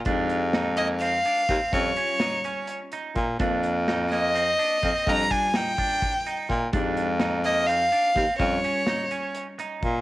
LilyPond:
<<
  \new Staff \with { instrumentName = "Violin" } { \time 7/8 \key f \minor \tempo 4 = 126 r4. ees''8 f''4. | des''2 r4. | r4. ees''2 | bes''8 aes''8 g''2 r8 |
r4. ees''8 f''4. | des''2 r4. | }
  \new Staff \with { instrumentName = "Clean electric guitar" } { \time 7/8 \key f \minor d'4 ees'8 bes8 c'8 d'8 c'8~ | c'8 des'8 ees'8 des'4 ees'4 | d'4 ees'8 bes8 c'8 d'8 c'8~ | c'8 d'8 ees'8 d'4 ees'4 |
d'4 ees'8 bes8 c'8 d'8 c'8~ | c'8 des'8 ees'8 des'4 ees'4 | }
  \new Staff \with { instrumentName = "Hollow-body jazz guitar" } { \time 7/8 \key f \minor <aes ees' g'>2.~ <aes ees' g'>8 | <g des' f'>2.~ <g des' f'>8 | <bes c' f'>2.~ <bes c' f'>8 | <g d' f'>2.~ <g d' f'>8 |
<aes ees' g'>2.~ <aes ees' g'>8 | <g des' f'>2.~ <g des' f'>8 | }
  \new Staff \with { instrumentName = "Baritone saxophone" } { \clef bass \time 7/8 \key f \minor f,2. ees,16 r16 | f,8 r2 r8 bes,8 | f,2. f,16 r16 | f,8 r2 r8 bes,8 |
f,2. ees,16 r16 | f,8 r2 r8 bes,8 | }
  \new DrumStaff \with { instrumentName = "Drums" } \drummode { \time 7/8 <hh bd>8 hh8 <hh sn>8 hh8 hh8 hh8 <hh bd>8 | <hh bd>8 hh8 <hh sn>8 hh8 hh8 hh8 <hh bd>8 | <hh bd>8 hh8 <hh sn>8 <hh sn>8 hh8 hh8 <hh bd>8 | <hh bd>8 <hh bd>8 <hh sn>8 <hh bd>8 <hh bd>8 hh8 <hh bd>8 |
<hh bd>8 hh8 <hh sn>8 hh8 hh8 hh8 <hh bd sn>8 | <hh bd>8 hh8 <hh sn>8 hh8 hh8 hh8 <hh bd>8 | }
>>